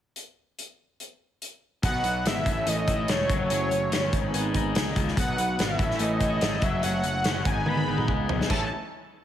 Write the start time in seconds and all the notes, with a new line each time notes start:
0.16 closed hi-hat
0.59 closed hi-hat
1.00 closed hi-hat
1.42 closed hi-hat
1.83 B1 B2 F#3 B3 D#4 F#5, kick, closed hi-hat
2.04 B1, closed hi-hat
2.25 G#1 B3 E5, snare, closed hi-hat
2.46 A1 A2 A3 C#4, kick, closed hi-hat
2.67 A1 A3 D#5, closed hi-hat
2.88 E4, kick, closed hi-hat
3.08 E1 A3 C#5, snare, closed hi-hat
3.29 F#1 F#3 A3 C#4, kick, closed hi-hat
3.50 F#1 F#3 C#5, closed hi-hat
3.71 F#1, closed hi-hat
3.92 G1 C#4, snare, closed hi-hat
4.12 G#1 G#2 D#3 B3 D#4, kick, closed hi-hat
4.34 G#1 G#3, closed hi-hat
4.54 G#1 D#4, kick, closed hi-hat
4.75 C#2 G#3, snare, closed hi-hat
4.96 C#2 D#3, kick, closed hi-hat
5.08 snare
5.16 B1 B2 F#3 B3 D#4 B4 F#5, kick, closed hi-hat
5.38 B1, closed hi-hat
5.59 G#1 B3 E5, snare, closed hi-hat
5.79 A1 A2 E3 A3 C#4 E4 C#5, kick, closed hi-hat
5.91 snare
5.99 A1 A3 D#5, closed hi-hat
6.20 E4, kick, closed hi-hat
6.41 G#1 A3, snare, closed hi-hat
6.62 F#1 F#3 A3 C#4 F#4 E5, kick, closed hi-hat
6.83 F#1 F#3 F#5, closed hi-hat
7.04 F#1, closed hi-hat
7.24 F#1 C#4, snare, closed hi-hat
7.45 G#1 G#2 D#3 G#3 B3 D#4 B4 G#5, kick, closed hi-hat
7.66 G#1 G#3 B5, high tom
7.77 high tom
7.88 G#1 D#4
7.98 mid tom
8.08 C#2 G#3, kick
8.29 B1 D#3, floor tom
8.41 snare
8.48 A1 A2 E3 A3 C#4 E4 C#5 A5, kick, crash